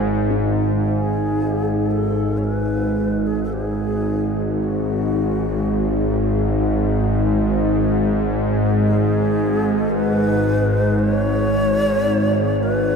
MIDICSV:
0, 0, Header, 1, 4, 480
1, 0, Start_track
1, 0, Key_signature, 5, "minor"
1, 0, Tempo, 500000
1, 12439, End_track
2, 0, Start_track
2, 0, Title_t, "Singing bowl"
2, 0, Program_c, 0, 14
2, 0, Note_on_c, 0, 80, 57
2, 295, Note_on_c, 0, 63, 59
2, 319, Note_off_c, 0, 80, 0
2, 12439, Note_off_c, 0, 63, 0
2, 12439, End_track
3, 0, Start_track
3, 0, Title_t, "Shakuhachi"
3, 0, Program_c, 1, 77
3, 813, Note_on_c, 1, 68, 93
3, 1833, Note_on_c, 1, 69, 85
3, 1847, Note_off_c, 1, 68, 0
3, 2281, Note_on_c, 1, 73, 69
3, 2295, Note_off_c, 1, 69, 0
3, 2345, Note_on_c, 1, 71, 90
3, 2359, Note_off_c, 1, 73, 0
3, 3134, Note_on_c, 1, 68, 84
3, 3149, Note_off_c, 1, 71, 0
3, 3296, Note_off_c, 1, 68, 0
3, 3302, Note_on_c, 1, 69, 64
3, 3388, Note_on_c, 1, 68, 85
3, 3403, Note_off_c, 1, 69, 0
3, 4417, Note_off_c, 1, 68, 0
3, 4417, Note_on_c, 1, 68, 67
3, 4451, Note_on_c, 1, 66, 73
3, 4460, Note_off_c, 1, 68, 0
3, 6473, Note_off_c, 1, 66, 0
3, 8500, Note_on_c, 1, 68, 92
3, 9540, Note_on_c, 1, 71, 82
3, 9555, Note_off_c, 1, 68, 0
3, 10552, Note_on_c, 1, 72, 111
3, 10567, Note_off_c, 1, 71, 0
3, 10677, Note_off_c, 1, 72, 0
3, 10677, Note_on_c, 1, 73, 111
3, 12123, Note_on_c, 1, 71, 95
3, 12137, Note_off_c, 1, 73, 0
3, 12439, Note_off_c, 1, 71, 0
3, 12439, End_track
4, 0, Start_track
4, 0, Title_t, "Synth drone"
4, 0, Program_c, 2, 95
4, 0, Note_on_c, 2, 32, 67
4, 0, Note_on_c, 2, 44, 64
4, 273, Note_off_c, 2, 32, 0
4, 275, Note_off_c, 2, 44, 0
4, 285, Note_on_c, 2, 32, 65
4, 286, Note_on_c, 2, 44, 71
4, 12439, Note_off_c, 2, 32, 0
4, 12439, Note_off_c, 2, 44, 0
4, 12439, End_track
0, 0, End_of_file